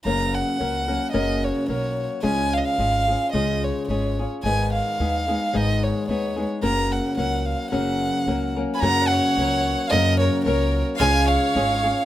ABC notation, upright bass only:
X:1
M:2/4
L:1/8
Q:"Swing" 1/4=110
K:F#
V:1 name="Upright bass" clef=bass
F,,,2 C,,2 | F,,,2 B,,,2 | C,,2 G,,,2 | C,,2 G,,,2 |
G,,,2 D,,2 | G,,,2 D,,2 | F,,,2 C,,2 | F,,,2 C,,2 |
F,,2 C,,2 | F,,2 C,,2 | C,,2 G,,,2 |]